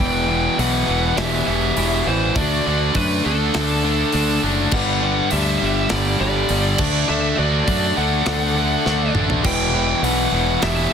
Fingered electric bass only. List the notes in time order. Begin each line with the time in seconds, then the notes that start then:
0.00 E1
0.59 B1
0.88 E1
1.17 E1
1.47 E1
1.77 E1
2.07 A1
2.36 D2
2.67 D2
2.96 F#2
3.26 D2
3.56 D2
4.14 D2
4.43 F#1
4.72 G1
5.32 D2
5.62 G1
5.92 G1
6.20 G1
6.50 G1
6.79 D2
7.10 D2
7.39 D2
7.68 F#2
7.98 D2
8.27 D2
8.87 D2
9.15 A1
9.45 E1
10.02 B1
10.32 E1
10.62 E1